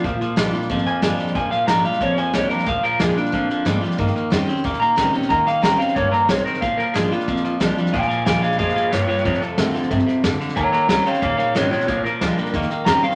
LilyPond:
<<
  \new Staff \with { instrumentName = "Clean electric guitar" } { \time 4/4 \key bes \mixolydian \tempo 4 = 182 f'4. r4 aes''4 r8 | aes''8 f''8 bes''8 f''8 des''8 aes''8 des''8 bes'8 | f''8 bes'8 aes'8 d'2 r8 | r2 r8 bes''4 r8 |
bes''8 f''8 bes''8 f''8 des''8 bes''8 des''8 bes'8 | f''8 bes'8 aes'8 f'2 r8 | <f'' aes''>8 <f'' aes''>8 <f'' aes''>8 <aes' f''>8 <aes' f''>8 <aes' f''>8 <f' des''>8 <f' des''>8 | <f' des''>8 a'2 r4. |
<des'' bes''>8 <des'' bes''>8 <des'' bes''>8 <des'' f''>8 <des'' f''>8 <des'' f''>8 <f' des''>8 <f' des''>8 | <f' des''>8 bes'2 r8 bes''8 f''8 | }
  \new Staff \with { instrumentName = "Steel-string acoustic guitar" } { \time 4/4 \key bes \mixolydian << { r4 <f aes d' f'>8 <d' f'>8 r4 <f aes d' f'>4 | r4 <f aes d' f'>8 <d' f'>8 r4 <f aes d' f'>8 <d' f'>8 | r4 <f aes d' f'>8 <d' f'>8 r4 <f aes d' f'>8 <d' f'>8 | r4 <ees g des' g'>8 <des' g'>8 r4 <ees g des' g'>8 <des' g'>8 |
r4 <ees g des' g'>8 <des' g'>8 r2 | r4 <f aes d' f'>8 <d' f'>8 r4 <f aes d' f'>8 <d' f'>8 | r4 <f aes d' f'>4 r2 | r4 <ees a c' f'>8 <c' f'>8 r2 |
r4 <ees g des' g'>8 <des' g'>8 r4 <ees g des' g'>8 <des' g'>8 | r4 <f aes d' f'>8 <d' f'>8 r4 <ees g des' g'>8 <des' g'>8 | } \\ { bes,2 f,2 | bes,2 f,2 | bes,2 f,2 | ees2 bes,2 |
ees2 g,4 aes,4 | bes,2 f,2 | bes,2 aes,4 g,4 | f,2 c4 d4 |
ees2 bes,2 | bes,2 ees2 | } >> }
  \new Staff \with { instrumentName = "Clean electric guitar" } { \clef bass \time 4/4 \key bes \mixolydian <bes, f>8 <bes, f>8 <bes, g>8 <bes, g>8 <bes, f>8 <bes, f>8 <bes, g>8 <bes, g>8 | <bes, f>8 <bes, f>8 <bes, g>8 <bes, g>8 <bes, f>8 <bes, f>8 <bes, g>8 <bes, g>8 | <bes, f>8 <bes, f>8 <bes, g>8 <bes, g>8 <bes, f>8 <bes, f>8 <bes, g>8 <bes, g>8 | <ees bes>8 <ees bes>8 <ees c'>8 <ees c'>8 <ees bes>8 <ees bes>8 <ees c'>8 <ees c'>8 |
<ees bes>8 <ees bes>8 <ees c'>8 <ees c'>8 <ees bes>8 <ees bes>8 <ees c'>8 <ees c'>8 | <bes, f>8 <bes, f>8 <bes, g>8 <bes, g>8 <bes, f>8 <bes, f>8 <bes, g>8 <bes, g>8 | <bes, f>8 <bes, f>8 <bes, g>8 <bes, g>8 <bes, f>8 <bes, f>8 <bes, g>8 <bes, g>8 | <f, c>8 <f, c>8 <f, d>8 <f, d>8 <f, c>8 <f, c>8 <f, d>8 <f, d>8 |
<ees bes>8 <ees bes>8 <ees c'>8 <ees c'>8 <ees bes>8 <ees bes>8 <ees c'>8 <ees c'>8 | <bes, f>8 <bes, f>8 <bes, g>8 <bes, g>8 <ees bes>8 <ees bes>8 <ees c'>8 <ees c'>8 | }
  \new Staff \with { instrumentName = "Upright bass" } { \clef bass \time 4/4 \key bes \mixolydian d,8 r8 bes,,8 r8 aes,,8 r8 g,,8 r8 | f,,8 r8 aes,,8 r4. c,8 r8 | d,8 r8 ees,8 r8 f,8 r8 aes,8 r8 | g,8 r8 f,8 r8 ees,8 r8 des,8 r8 |
ees,8 r8 bes,,8 r8 des,8 r8 c,8 r8 | bes,,8 r8 aes,,8 r8 bes,,8 r8 c,8 r8 | d,8 r8 ees,8 r8 f,8 r8 g,8 r8 | f,8 r8 a,8 r8 g,8 r8 f,8 r8 |
ees,8 r8 des,8 r8 ees,8 r8 aes,,8 r8 | bes,,8 r8 d,8 r8 ees,8 r8 e,8 r8 | }
  \new DrumStaff \with { instrumentName = "Drums" } \drummode { \time 4/4 <bd sn>8 sn8 <hhp sn>8 sn16 sn16 <bd sn>16 sn16 sn8 <hhp sn>8 sn16 sn16 | <bd sn>8 sn8 <hhp sn>8 sn16 sn16 <bd sn>8 sn8 <hhp sn>8 sn16 sn16 | <bd sn>8 sn8 <hhp sn>8 sn16 sn16 <bd sn>8 sn8 <hhp sn>8 sn16 sn16 | <bd sn>16 sn16 sn8 <hhp sn>8 sn16 sn16 <bd sn>16 sn16 sn8 <hhp sn>8 sn16 sn16 |
<bd sn>8 sn8 <hhp sn>8 sn16 sn16 <bd sn>8 sn8 <hhp sn>8 sn16 sn16 | <bd sn>8 sn8 <hhp sn>8 sn16 sn16 <bd sn>16 sn16 sn8 <hhp sn>8 sn16 sn16 | <bd sn>16 sn16 sn8 <hhp sn>8 sn16 sn16 <bd sn>16 sn16 sn8 <hhp sn>8 sn16 sn16 | <bd sn>16 sn16 sn8 <hhp sn>8 sn16 sn16 <bd sn>16 sn16 sn8 <hhp sn>8 sn16 sn16 |
<bd sn>8 sn8 <hhp sn>8 sn16 sn16 <bd sn>8 sn8 <hhp sn>8 sn16 sn16 | <bd sn>8 sn8 <hhp sn>8 sn16 sn16 <bd sn>16 sn16 sn8 <hhp sn>8 sn16 sn16 | }
>>